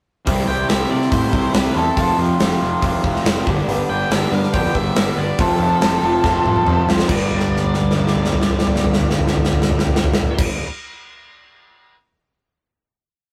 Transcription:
0.26 C2 C3 E3 G3 C4 E4, kick, open hi-hat
0.46 C2 G3 C4 E4 G5
0.68 C2 E3 G3 C4 E4 E5, snare, open hi-hat
0.89 C3 G3 C4 D5
1.02 snare
1.10 A2 C3 E3 G3 C4 E4 C5, kick, open hi-hat
1.31 C2 G3 C4 E4, kick
1.53 C2 E3 G3 C4 E4 B4, snare, open hi-hat
1.74 E2 G3 C4 E4 A4
1.96 F1 F2 C3 F3 A3 C4 F4, kick, open hi-hat
2.17 F2 A3 C4 F4
2.39 F1 F3 A3 C4 F4, snare, open hi-hat
2.61 F1 F2 C3 F3
2.82 F1 F3 A3 C4 F4, kick, open hi-hat
3.03 F1 A3 C4 F4, kick
3.16 snare
3.25 F1 F3 A3 C4 F4, snare, open hi-hat
3.46 G1 G2 D3 G3 B3 D4, kick
3.67 G1 G2 D3 G3 B3 D4 B4, open hi-hat
3.89 G1 G3 B3 D4 B4 G5
4.10 G1 G2 D3 G3 B3 D4 B4 E5, snare, open hi-hat
4.31 G2 G3 B3 D4 B4 F5
4.44 snare
4.53 F2 G2 D3 G3 B3 D4 B4 G5, kick, open hi-hat
4.74 G1 G3 B3 D4 B4 E5, kick
4.95 G1 D3 G3 B3 D4 B4, snare, open hi-hat
5.17 G1 G3 B3 D4 B4 D5
5.37 F1 F2 C3 F3 A3 C4 F4 A4, kick, open hi-hat
5.59 F2 F3 A3 C4 F4 A4
5.80 F1 C3 F3 A3 C4 F4 A4, snare, open hi-hat
6.02 F1 F2 C3 F3 C4 F4 A4
6.23 F1 F2 C3 F3 A3 C4 F4 A4, kick, snare
6.43 F1 F3 A3 C4 F4 A4, mid tom
6.56 mid tom
6.65 F2 C3 F3 A3 C4 F4 A4, mid tom
6.85 C2 F3 A3 C4 F4 A4, snare
6.90 C4
6.99 snare
7.06 G1 G2 D3 D5, kick, crash
7.10 G3 B3 D4
7.15 B4
7.31 floor tom
7.40 snare
7.48 floor tom
7.57 snare
7.65 floor tom
7.74 snare
7.82 floor tom
7.91 snare
7.98 floor tom
8.07 snare
8.15 floor tom
8.25 snare
8.33 floor tom
8.42 snare
8.50 floor tom
8.59 snare
8.67 floor tom
8.76 snare
8.84 floor tom
8.94 snare
9.01 floor tom
9.11 snare
9.19 floor tom
9.28 snare
9.36 floor tom
9.45 snare
9.53 floor tom
9.62 snare
9.70 floor tom
9.79 snare
9.87 floor tom
9.96 snare
10.04 floor tom
10.13 snare
10.21 floor tom
10.39 kick, crash

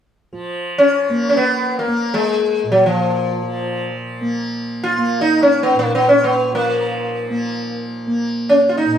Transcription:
0.33 F3
0.78 C#4
1.09 A#3
1.29 C#4
1.37 B3
1.79 A#3
1.87 A#3
2.14 G#3
2.64 A#2
2.72 F#3
2.86 F3
3.42 F3
4.21 A#3
4.84 F4
4.97 A#3
5.21 D#4
5.42 C#4
5.63 B3
5.75 A#2
5.79 A#3
5.95 B3
6.09 C#4
6.24 B3
6.52 F3 A#3
7.29 A#3
8.07 A#3
8.49 C#4
8.69 F4
8.77 D#4
8.86 A#2

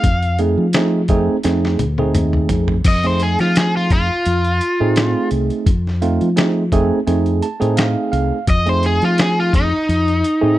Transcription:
Already playing: F5
0.04 F2, kick, closed hi-hat
0.23 closed hi-hat
0.39 A3 C4 D#4 G#4, closed hi-hat
0.58 F3
0.73 A3 C4 D#4 G#4, snare, closed hi-hat
1.08 F2 A3 C4 D#4 G#4, kick, closed hi-hat
1.43 F2 A3 C4 D#4 G#4, snare, closed hi-hat
1.65 snare
1.79 D2, closed hi-hat, high tom
1.98 A3 C4 D#4 G#4, high tom
2.15 D#2, closed hi-hat, mid tom
2.33 mid tom
2.49 F2, closed hi-hat, floor tom
2.68 floor tom
2.84 F2 D#5, kick, closed hi-hat, crash
3.03 A3 C4 D#4 G#4 C5, closed hi-hat
3.20 G#4, closed hi-hat
3.39 F3 F4, snare, closed hi-hat
3.56 G#4, snare, closed hi-hat
3.77 F4
3.90 F2 F4, kick, closed hi-hat
4.25 F2, closed hi-hat
4.44 closed hi-hat
4.61 closed hi-hat
4.80 A2 A3 C4 D#4 G#4
4.96 snare, closed hi-hat
5.31 C2, closed hi-hat
5.50 closed hi-hat
5.66 F2, kick, closed hi-hat
5.87 snare
6.02 A3 C4 D#4 F4, closed hi-hat
6.21 F3, closed hi-hat
6.36 A3 C4 D#4 G#4, snare, closed hi-hat
6.72 F2 A3 C4 D#4 G#4, kick, closed hi-hat
7.07 F2 A3 C4 D#4 G#4, closed hi-hat
7.26 closed hi-hat
7.42 A5, closed hi-hat
7.60 A2 A3 C4 D#4 G#4, closed hi-hat
7.77 F5, snare, closed hi-hat
8.12 C2 F5, closed hi-hat
8.47 F2 D#5, kick, closed hi-hat
8.66 A3 C4 D#4 G#4 C5, closed hi-hat
8.83 G#4, closed hi-hat
9.02 F3 F4, closed hi-hat
9.18 G#4, snare, closed hi-hat
9.40 F4
9.53 F2 D#4, kick, closed hi-hat
9.89 F2, closed hi-hat
10.08 closed hi-hat
10.24 closed hi-hat
10.41 A2 A3 C4 D#4 G#4

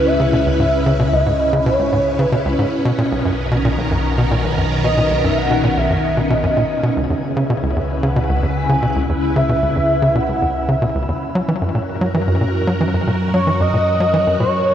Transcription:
Already playing: C#2 C#3 C#4 E4 F#4 B4
0.06 E5
0.20 C#3
0.33 B2
0.47 C#2
0.59 G#2 E5
0.86 C#3
1.00 B2
1.12 C#2 D#5
1.19 E5
1.26 G#2 D#5
1.53 C#3
1.66 B2 C#5
1.79 C#2
1.92 G#2
2.19 C#3 B4
2.32 B2
2.45 C#2
2.59 G#2
2.72 B1 B2
2.83 B2 B3
2.99 A#2
3.07 A#4
3.12 B1
3.25 F#2
3.33 D#3
3.52 B2
3.65 A#2
3.78 B1
3.91 F#2
4.18 B2
4.31 A#2
4.44 B1
4.58 F#2
4.84 B2 D#5
4.98 A#2
5.11 B1
5.24 F#2 E5
5.38 F#5
5.51 B2
5.64 A#2
5.77 B1 E5
5.90 F#2
6.17 B2
6.30 B2 D#5
6.44 F#2 D#5
6.57 A#2
6.83 B2
6.97 C#2 C#3 E5
7.10 E2
7.24 E4
7.37 C#3
7.50 B2
7.61 C#2 B4
7.76 E2
8.03 C#3 F#5
8.16 B2
8.29 C#2
8.43 E2
8.56 G#5
8.69 C#3
8.83 B2
8.96 C#2
9.09 E2
9.36 C#3 E5
9.49 B2
9.62 C#2
9.76 E2
10.02 C#3
10.15 B2 F#5
10.29 C#2
10.42 E2
10.68 C#3 E5
10.82 B2
10.95 C#2
11.08 E2
11.22 F#2
11.35 F#3
11.45 E3 F#4
11.61 F#2
11.71 A#2 A#4
12.01 F#3
12.14 E3
12.28 F#2
12.41 A#2
12.68 F#3
12.81 E3
12.94 F#2
13.08 A#2
13.34 F#3 C#5
13.47 E3
13.60 F#2 D#5
13.74 A#2
14.00 F#3
14.14 E3
14.27 F#2
14.40 A#2 C#5

